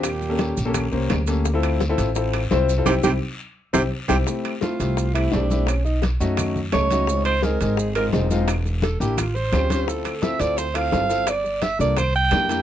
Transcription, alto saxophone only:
X:1
M:4/4
L:1/8
Q:1/4=171
K:F
V:1 name="Alto saxophone"
G4 z4 | z8 | G G z3 G z G | z2 F3 E D2 |
^C ^D z4 ^c2- | ^c =c B2 _A B z2 | z2 A G ^E ^B3 | A2 e d c f3 |
d2 e d c g3 |]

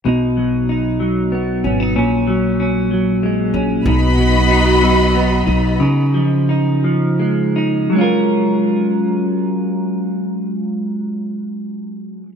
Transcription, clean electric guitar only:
X:1
M:6/8
L:1/16
Q:3/8=60
K:F#
V:1 name="Clean electric guitar"
[B,,D]2 F,2 D2 F,2 B,2 C D | [A,,C]2 F,2 C2 F,2 G,2 C2 | [B,,D]2 F,2 D2 F,2 B,2 D2 | [C,D]2 E,2 D2 E,2 G,2 D2 |
[F,G,CEA]12- | [F,G,CEA]12 |]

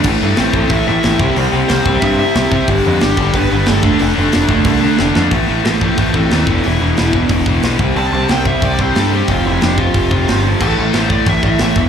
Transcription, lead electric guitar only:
X:1
M:4/4
L:1/8
Q:1/4=182
K:Am
V:1 name="Lead electric guitar"
z2 [Cc]2 [Ee] [Ee]3 | z2 [Cc]2 [Ee] [Ee]3 | z2 [G,G]2 [B,B] [B,B] [A,A]2 | [A,A]6 z2 |
z2 [Ac] [Ac] [Ac] [CA] [CA] [EA] | E4 z4 | a2 g e d c A G | F E D F4 z |
A2 c d e e3 |]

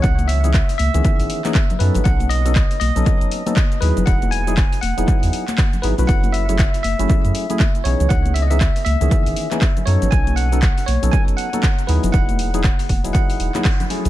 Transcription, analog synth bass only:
X:1
M:4/4
L:1/16
Q:"Swing 16ths" 1/4=119
K:C#m
V:1 name="Analog synth bass" clef=bass
C,,4 z2 C,, C,, z G,,, z4 F,, G,,, | B,,,4 z2 B,,, B,,, z F,,, z4 D,, F,,, | E,,,4 z2 E,,, E,,, z E,, z4 G,,, B,,, | F,,,4 z2 F,,, F,,, z F,, z4 B,,, C,, |
C,,4 z2 C,, C,, z G,,, z4 F,, G,,, | B,,,4 z2 B,,, B,,, z F,,, z4 D,, F,,, | E,,,4 z2 E,,, E,,, z2 E,,, z4 B,,, |]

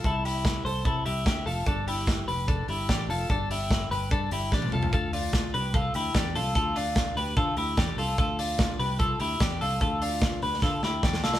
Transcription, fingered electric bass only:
X:1
M:4/4
L:1/8
Q:1/4=147
K:Gmix
V:1 name="Fingered electric bass" clef=bass
C,,3 C,, C, C,, D,, F,,, | G,,,3 F,,,2 G,,, A,,, F,,, | G,,,3 G,,, G,, G,,, A,,, C,, | D,,3 C,,2 D,, E,, C,, |
D,,3 D,, D, D,, E,, C,, | D,,3 C,,2 D,, E,, C,, | D,,3 D,, D, D,, E,, C,, |]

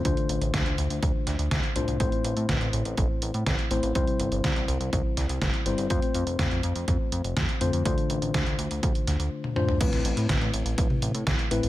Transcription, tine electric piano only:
X:1
M:4/4
L:1/8
Q:1/4=123
K:Am
V:1 name="Tine electric piano"
[D,A,DFc]6- [D,A,DFc] [A,,A,DFc] | [A,,A,CEc]6- [A,,A,CEc] [A,CEc] | [C,G,CEc]6- [C,G,CEc] [G,CEc] | [A,CFc]6- [A,CFc] [D,A,CFc] |
[D,A,DFc]6- [D,A,DFc] [A,,A,DFc] | [A,,A,CEB]6- [A,,A,CEB] [A,,A,CEB] |]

